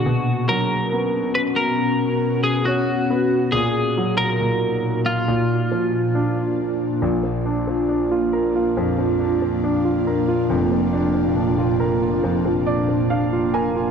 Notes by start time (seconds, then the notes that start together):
Already playing: F#4
0.06 B2 B3 C#4 F#4
0.49 F#3 A#4
0.93 B3
1.35 B4
1.56 A#4
2.44 G#4
2.65 C#4 F#4
3.10 B3
3.52 A#2 A#3 D#4 G#4
3.97 F#3
4.18 A#4
4.41 A#2
5.06 F4
5.28 A#2 D4 F4
5.71 F3
6.15 D4
7.01 A#1 A#2 A#3 D4 F4
7.23 F3
7.46 D4
7.67 F3
7.89 D4
8.11 F4
8.33 A#4
8.55 F4
8.77 F2 F3
8.98 F3
9.19 D4
9.42 F3
9.64 D4
9.85 F4
10.07 A#4
10.28 F4
10.50 F1 F2
10.71 F3
10.93 D4
11.15 F3
11.36 D4
11.58 F4
11.80 A#4
12.02 F4
12.24 F2 F3
12.45 F3
12.66 D4 D5
12.89 F3
13.10 D4 F5
13.33 F4
13.54 A#4 G#5
13.76 F4